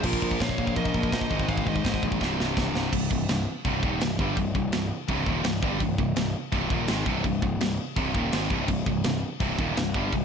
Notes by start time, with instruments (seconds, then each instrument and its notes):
0.03 picked electric bass A#1, distorted electric guitar A#2 F3 A#3, lead electric guitar F4 A#4, kick, china, crash
0.13 kick
0.22 picked electric bass A#1, kick
0.31 kick
0.40 picked electric bass A#1, lead electric guitar C#5 F5, kick, snare, china
0.49 kick
0.58 picked electric bass A#1, kick
0.67 kick
0.76 picked electric bass A#1, lead electric guitar A#4 D#5, kick, china
0.85 kick
0.94 picked electric bass A#1, kick
1.03 kick
1.12 picked electric bass A#1, lead electric guitar C5 D#5, kick, snare, china
1.21 kick
1.30 picked electric bass G#1, distorted electric guitar G#2 D#3 G#3, kick
1.40 kick
1.47 picked electric bass G#1, lead electric guitar C5 F5, kick, china
1.57 kick
1.66 picked electric bass G#1, lead electric guitar C5 D#5, kick
1.76 kick
1.85 picked electric bass G#1, kick, snare, china
1.94 kick
2.03 picked electric bass A#1, kick
2.12 kick
2.20 picked electric bass C1, distorted electric guitar C2 G2 C3, kick, snare
2.39 picked electric bass C1, snare
2.57 picked electric bass C1, kick, snare
2.74 picked electric bass C1, snare
2.92 picked electric bass C1, distorted electric guitar C2 G2, kick, crash
3.10 picked electric bass C1, distorted electric guitar C2 G2, kick
3.28 picked electric bass C1, distorted electric guitar C2 G2, snare, crash
3.65 picked electric bass C1, distorted electric guitar C2 G2 C3, kick, crash
3.83 picked electric bass D#1, distorted electric guitar D#2 A#2 D#3, kick
4.01 picked electric bass C1, distorted electric guitar C2 G2, snare, crash
4.19 picked electric bass G1, distorted electric guitar G2 D3 G3, kick
4.37 picked electric bass C1, distorted electric guitar C2 G2, kick, crash
4.55 picked electric bass C1, distorted electric guitar C2 G2, kick
4.72 picked electric bass C1, distorted electric guitar C2 G2, snare, crash
5.08 picked electric bass C1, distorted electric guitar C2 G2 C3, kick, crash
5.26 picked electric bass D#1, distorted electric guitar D#2 A#2 D#3, kick
5.44 picked electric bass C1, distorted electric guitar C2 G2, snare, crash
5.62 picked electric bass G1, distorted electric guitar G2 D3 G3, kick
5.80 picked electric bass C1, distorted electric guitar C2 G2, kick, crash
5.98 picked electric bass C1, distorted electric guitar C2 G2, kick
6.16 picked electric bass C1, distorted electric guitar C2 G2, snare, crash
6.52 picked electric bass C1, distorted electric guitar C2 G2 C3, kick, crash
6.70 picked electric bass D#1, distorted electric guitar D#2 A#2 D#3, kick
6.88 picked electric bass G#1, distorted electric guitar G#2 D#3 G#3, snare, crash
7.06 picked electric bass C1, distorted electric guitar C2 G2 C3, kick
7.24 picked electric bass C1, distorted electric guitar C2 G2, kick, crash
7.42 picked electric bass C1, distorted electric guitar C2 G2, kick
7.60 picked electric bass C1, distorted electric guitar C2 G2, snare, crash
7.96 picked electric bass C1, distorted electric guitar C2 G2 C3, kick, crash
8.14 picked electric bass D#1, distorted electric guitar D#2 A#2 D#3, kick
8.32 picked electric bass G#1, distorted electric guitar G#2 D#3 G#3, snare, crash
8.50 picked electric bass C1, distorted electric guitar C2 G2 C3, kick
8.68 picked electric bass C1, distorted electric guitar C2 G2, kick, crash
8.86 picked electric bass C1, distorted electric guitar C2 G2, kick
9.04 picked electric bass C1, distorted electric guitar C2 G2, snare, crash
9.40 picked electric bass C1, distorted electric guitar C2 G2 C3, kick, crash
9.59 picked electric bass D#1, distorted electric guitar D#2 A#2 D#3, kick
9.76 picked electric bass C1, distorted electric guitar C2 G2, snare, crash
9.94 picked electric bass G1, distorted electric guitar G2 D3 G3, kick
10.12 picked electric bass C1, distorted electric guitar C2 G2, kick, crash